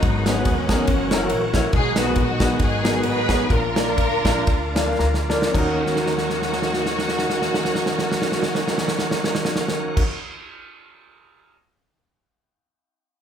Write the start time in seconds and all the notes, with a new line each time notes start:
Already playing: F#3 B3 D#4
0.02 G#1 G#2 D#3 F#3 G#3 B3 F#4, kick, ride
0.26 F#3 B3 C#4 D#4 F#4 G#4 B4, snare, ride
0.36 B3 D#4 F#4 G#4 B4
0.45 D#2, kick, ride
0.69 B3 D#4 F#4 G#4 A#4, kick, snare, ride
0.87 F#1 E3 F#3 A#3 C#4 F#4, kick, ride
1.11 A#3 C#4 E4 F#4 A#4, snare, ride
1.22 A#3 C#4 E4 F#4 A#4
1.30 A#1, ride
1.54 A#3 C#4 E4 F#4 C#5, kick, snare, ride
1.73 B1 B2 D#3 F#3 G#3 B3 D#4 F#4 G#4, kick, ride
1.96 B3 D#4 F#4 G#4 B4, snare, ride
2.00 F#4
2.06 B3 D#4 F#4 G#4 B4
2.16 A#1 D#4 F#4, kick, ride
2.40 B3 D#4 F#4 G#4 B4, kick, snare, ride
2.59 G#1 D#4 G#4, kick, ride
2.84 B3 D#4 F#4 G#4 A#4, snare, ride
2.93 B3 D#4 F#4 G#4 B4
3.03 A1 D#4 G#4 B4, ride
3.29 B3 D#4 F#4 G#4 C#5, kick, snare, ride
3.50 A#1 A#2 A#3 D4 F4 A#4, kick, ride
3.76 A#3 D4 F4 A#4 D5, snare, ride
3.87 A#3 D4 F4 A#4 D5
3.98 D2, kick, ride
4.24 A#1 A#3 D4 F4 A#4 D5, kick, snare, ride
4.47 D2, kick, ride
4.75 A#3 D4 F4 A#4 D5 F5, snare, ride
4.86 A#3 D4 F4 A#4 F5
4.98 D2 A#5, snare
5.14 snare
5.29 A#3 D4 F4 A#4 D5, snare
5.42 snare
5.52 D#2 D#3 A#3 C#4 D#4 F#4, kick, crash
5.57 F#4 A#4
5.87 snare
5.96 snare
6.06 snare
6.18 snare
6.30 snare
6.42 snare
6.53 snare
6.62 snare
6.74 snare
6.86 snare
6.99 snare
7.08 snare
7.19 snare
7.30 snare
7.42 snare
7.54 snare
7.65 snare
7.75 snare
7.86 snare
7.99 snare
8.12 snare
8.22 snare
8.32 snare
8.43 snare
8.55 snare
8.68 snare
8.78 snare
8.88 snare
8.99 snare
9.11 snare
9.24 snare
9.35 snare
9.45 snare
9.56 snare
9.68 snare
9.97 kick, crash